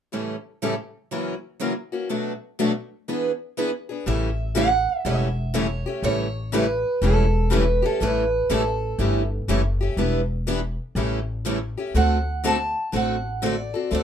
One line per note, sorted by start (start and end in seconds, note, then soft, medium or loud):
0.12 0.34 A2 medium
0.12 0.35 C#3 medium
0.12 0.35 E3 soft
0.12 0.35 G3 medium
0.12 0.35 A3 medium
0.12 0.35 C#4 medium
0.12 0.35 E4 medium
0.12 0.35 G4 medium
0.12 0.35 A4 medium
0.62 0.74 A2 medium
0.62 0.74 C#3 medium
0.62 0.74 E3 medium
0.62 0.74 G3 medium
0.62 0.74 A3 medium
0.62 0.74 C#4 medium
0.62 0.74 E4 medium
0.62 0.74 G4 medium
0.62 0.74 A4 medium
1.11 1.33 F#2 medium
1.11 1.33 C#3 medium
1.11 1.34 E3 medium
1.11 1.33 F#3 medium
1.11 1.34 A#3 medium
1.11 1.34 C#4 medium
1.11 1.34 E4 medium
1.11 1.34 F#4 medium
1.11 1.34 A#4 medium
1.60 1.72 F#2 medium
1.60 1.72 C#3 medium
1.60 1.72 E3 medium
1.60 1.72 F#3 medium
1.60 1.72 A#3 medium
1.60 1.73 C#4 medium
1.60 1.72 E4 medium
1.60 1.73 F#4 medium
1.60 1.72 A#4 medium
1.92 2.09 E3 soft
1.92 2.09 A#3 soft
1.92 2.09 C#4 soft
1.92 2.09 F#4 soft
2.09 2.32 B2 medium
2.09 2.32 F#3 medium
2.09 2.32 A3 medium
2.09 2.32 D4 medium
2.09 2.32 F#4 medium
2.09 2.32 B4 medium
2.59 2.71 B2 medium
2.59 2.71 F#3 medium
2.59 2.71 A3 medium
2.59 2.71 D4 medium
2.59 2.71 F#4 medium
2.59 2.71 B4 medium
3.08 3.30 E3 medium
3.08 3.30 B3 medium
3.08 3.31 D4 medium
3.08 3.31 G#4 medium
3.08 3.31 B4 medium
3.57 3.69 E3 medium
3.57 3.69 B3 medium
3.57 3.70 D4 medium
3.57 3.70 G#4 medium
3.57 3.70 B4 medium
3.89 4.06 B3 soft
3.89 4.07 D4 soft
3.89 4.06 G#4 soft
4.06 4.85 A1 medium
4.06 4.29 C#3 medium
4.06 4.29 E3 medium
4.06 4.29 G3 medium
4.06 4.29 A3 medium
4.06 4.29 C#4 medium
4.06 4.29 E4 medium
4.06 4.29 G4 medium
4.06 4.29 A4 medium
4.06 4.53 E5 medium
4.55 4.67 C#3 medium
4.55 4.67 E3 loud
4.55 4.68 G3 medium
4.55 4.67 A3 loud
4.55 4.68 C#4 medium
4.55 4.68 E4 medium
4.55 4.68 G4 medium
4.55 4.68 A4 loud
4.55 5.06 F#5 loud
5.05 5.84 E1 medium
5.05 5.27 C#3 medium
5.05 5.27 E3 medium
5.05 5.28 G3 medium
5.05 5.28 A3 medium
5.05 5.28 C#4 medium
5.05 5.28 E4 medium
5.05 5.28 G4 medium
5.05 5.28 A4 medium
5.05 5.55 E5 medium
5.54 5.66 C#3 medium
5.54 5.66 E3 medium
5.54 5.66 G3 medium
5.54 5.66 A3 medium
5.54 5.66 C#4 medium
5.54 5.66 E4 medium
5.54 5.66 G4 medium
5.54 5.67 A4 medium
5.54 6.03 C#5 medium
5.86 6.03 A3 soft
5.86 6.03 C#4 soft
5.86 6.03 G4 soft
6.02 6.82 A1 medium
6.02 6.26 C#3 medium
6.02 6.26 E3 medium
6.02 6.26 G3 medium
6.02 6.26 A3 medium
6.02 6.26 C#4 medium
6.02 6.26 E4 medium
6.02 6.26 G4 medium
6.02 6.26 A4 medium
6.02 6.54 C#5 loud
6.52 6.64 C#3 medium
6.52 6.64 E3 loud
6.52 6.65 G3 medium
6.52 6.65 A3 medium
6.52 6.65 C#4 medium
6.52 6.65 E4 medium
6.52 6.65 G4 medium
6.52 6.66 A4 medium
6.52 6.99 B4 medium
7.02 7.81 E1 medium
7.02 7.24 C#3 medium
7.02 7.24 E3 medium
7.02 7.25 G3 medium
7.02 7.24 A3 medium
7.02 7.24 C#4 medium
7.02 7.25 E4 medium
7.02 7.25 G4 medium
7.02 7.25 A4 medium
7.02 7.49 A4 medium
7.50 7.62 C#3 medium
7.50 7.63 E3 medium
7.50 7.64 G3 medium
7.50 7.63 A3 medium
7.50 7.63 C#4 medium
7.50 7.64 E4 medium
7.50 7.63 G4 loud
7.50 7.64 A4 loud
7.50 7.85 B4 medium
7.82 8.01 A3 soft
7.82 8.00 C#4 soft
7.82 7.99 G4 soft
7.82 8.02 A4 medium
8.00 8.40 A1 medium
8.00 8.23 C#3 medium
8.00 8.23 E3 medium
8.00 8.23 G3 medium
8.00 8.23 A3 medium
8.00 8.23 C#4 medium
8.00 8.24 E4 medium
8.00 8.23 G4 medium
8.00 8.24 A4 medium
8.00 8.52 B4 medium
8.50 8.92 A1 medium
8.50 8.61 C#3 medium
8.50 8.62 E3 medium
8.50 8.62 G3 medium
8.50 8.62 A3 medium
8.50 8.62 C#4 medium
8.50 8.62 E4 medium
8.50 8.62 G4 loud
8.50 8.62 A4 medium
8.50 9.28 A4 medium
8.98 9.41 G1 medium
8.98 9.22 C#3 medium
8.98 9.22 E3 medium
8.98 9.21 G3 medium
8.98 9.22 A3 medium
8.98 9.22 C#4 medium
8.98 9.21 E4 medium
8.98 9.22 G4 medium
8.98 9.21 A4 medium
9.48 9.90 F#1 medium
9.48 9.60 C#3 medium
9.48 9.60 E3 medium
9.48 9.61 G3 medium
9.48 9.60 A3 medium
9.48 9.61 C#4 medium
9.48 9.61 E4 loud
9.48 9.61 G4 medium
9.48 9.61 A4 medium
9.81 9.98 A3 soft
9.81 9.98 C#4 soft
9.81 9.97 G4 soft
9.97 10.76 E1 medium
9.97 10.20 E3 medium
9.97 10.20 G3 medium
9.97 10.20 B3 medium
9.97 10.20 D4 medium
9.97 10.20 E4 medium
9.97 10.20 G4 medium
9.97 10.20 B4 medium
10.47 10.59 E3 medium
10.47 10.59 G3 medium
10.47 10.59 B3 medium
10.47 10.59 D4 loud
10.47 10.60 E4 medium
10.47 10.59 G4 loud
10.47 10.60 B4 medium
10.95 11.74 A1 medium
10.95 11.18 C#3 medium
10.95 11.18 E3 medium
10.95 11.18 G3 medium
10.95 11.19 A3 medium
10.95 11.19 C#4 medium
10.95 11.19 E4 medium
10.95 11.19 G4 medium
10.95 11.19 A4 medium
11.45 11.57 C#3 medium
11.45 11.57 E3 medium
11.45 11.58 G3 medium
11.45 11.57 A3 medium
11.45 11.57 C#4 medium
11.45 11.58 E4 loud
11.45 11.58 G4 medium
11.45 11.58 A4 medium
11.78 11.94 A3 soft
11.78 11.94 C#4 soft
11.78 11.94 G4 soft
11.94 12.73 D2 medium
11.94 12.17 D3 medium
11.94 12.17 A3 medium
11.94 12.17 C4 medium
11.94 12.17 F#4 medium
11.94 12.17 A4 medium
11.94 12.46 F#5 medium
12.44 12.55 D3 medium
12.44 12.56 A3 medium
12.44 12.56 C4 medium
12.44 12.56 F#4 loud
12.44 12.56 A4 loud
12.44 12.91 A5 medium
12.92 13.72 A1 medium
12.92 13.15 D3 medium
12.92 13.15 A3 medium
12.92 13.15 C4 medium
12.92 13.15 F#4 medium
12.92 13.16 A4 medium
12.92 13.45 F#5 medium
13.42 13.54 D3 medium
13.42 13.54 A3 medium
13.42 13.54 C4 medium
13.42 13.54 F#4 medium
13.42 13.54 A4 medium
13.46 13.93 D5 medium
13.74 13.90 C4 soft
13.74 13.91 F#4 soft
13.74 13.91 A4 medium
13.91 14.03 D2 medium
13.91 14.03 D3 medium
13.91 14.03 A3 medium
13.91 14.03 C4 medium
13.91 14.03 F#4 medium
13.91 14.03 A4 medium
13.91 14.03 D5 medium